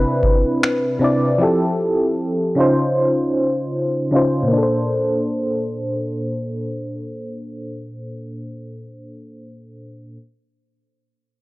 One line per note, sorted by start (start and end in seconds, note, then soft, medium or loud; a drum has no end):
0.00 0.78 C3 medium
0.00 0.79 C4 medium
0.00 0.79 D4 medium
0.00 0.80 E4 medium
0.00 0.81 B4 medium
0.23 kick medium
0.63 finger snap loud
0.99 1.31 C3 medium
0.99 1.31 C4 medium
0.99 1.32 D4 medium
0.99 1.33 E4 medium
1.04 1.33 D5 medium
1.38 2.56 F3 medium
1.38 2.57 C4 medium
1.38 2.57 E4 medium
1.38 2.58 G4 medium
1.43 2.59 A4 medium
2.55 3.81 C#3 medium
2.55 3.82 C#4 medium
2.55 3.83 D#4 medium
2.55 3.83 F4 medium
2.60 3.84 C5 medium
4.11 4.42 C#3 medium
4.11 4.43 C#4 medium
4.11 4.44 D#4 medium
4.11 4.44 F4 medium
4.16 4.45 C5 medium
4.43 8.94 A#2 medium
4.48 8.99 A#3 medium
4.53 9.04 D4 medium
4.58 9.09 A4 medium
4.63 9.14 C5 medium